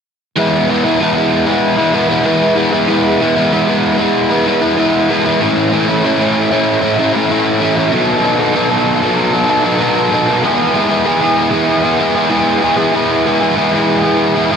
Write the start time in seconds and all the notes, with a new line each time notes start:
0.37 E3 G#3 B3 E4
0.68 E3 G#3 B3 E4
0.84 G#3 B3 E4
1.00 E3 G#3 B3 E4
1.15 G#3 B3 E4
1.46 G#3 B3 E4
1.77 G#3 B3 E4
1.93 E3 G#3 B3 E4
2.09 G#3 B3 E4
2.24 E3 G#3 B3 E4
2.55 E3 G#3 B3 E4
2.72 G#3 B3 E4
2.87 E3 G#3 B3 E4
3.21 E3 G#3 B3 E4
3.36 G#3 B3 E4
3.51 E3 G#3 B3 E4
3.68 G#3 B3 E4
3.98 G#3 B3 E4
4.30 G#3 B3 E4
4.46 E3 G#3 B3 E4
4.61 G#3 B3 E4
4.76 E3 G#3 B3 E4
5.09 E3 G#3 B3 E4
5.25 G#3 B3 E4
5.40 A2 E3 A3 C#4 E4
5.72 E3 A3 C#4 E4
5.88 A3 C#4 E4
6.04 A2 E3 A3 C#4 E4
6.19 A3 C#4 E4
6.51 A3 C#4 E4
6.82 A3 C#4 E4
6.97 E3 A3 C#4 E4
7.13 A3 C#4 E4
7.29 A2 E3 A3 C#4 E4
7.60 E3 A3 C#4 E4
7.76 A3 C#4 E4
7.92 B2 D#3 F#3 B3 D#4 A4
8.23 F#3 B3 D#4 A4
8.39 F#3 B3 D#4 A4
8.54 B2 D#3 F#3 B3 D#4 A4
8.71 F#3 B3 D#4 A4
9.02 F#3 B3 D#4 A4
9.33 F#3 B3 D#4 A4
9.48 F#3 B3 D#4 A4
9.64 F#3 B3 D#4 A4
9.80 B2 D#3 F#3 B3 D#4 A4
10.12 F#3 B3 D#4 A4
10.28 F#3 B3 D#4 A4
10.43 E3 G#3 B3 E4 G#4
10.74 G#3 B3 E4 G#4
10.89 B3 E4 G#4
11.05 E3 G#3 B3 E4 G#4
11.21 B3 E4 G#4
11.51 B3 E4 G#4
11.83 B3 E4 G#4
11.99 G#3 B3 E4 G#4
12.15 B3 E4 G#4
12.29 E3 G#3 B3 E4 G#4
12.62 G#3 B3 E4 G#4
12.77 B3 E4 G#4
12.93 E3 G#3 B3 E4 G#4
13.25 G#3 B3 E4 G#4
13.41 B3 E4 G#4
13.55 E3 G#3 B3 E4 G#4
13.72 B3 E4 G#4
14.02 B3 E4 G#4
14.35 B3 E4 G#4
14.50 G#3 B3 E4 G#4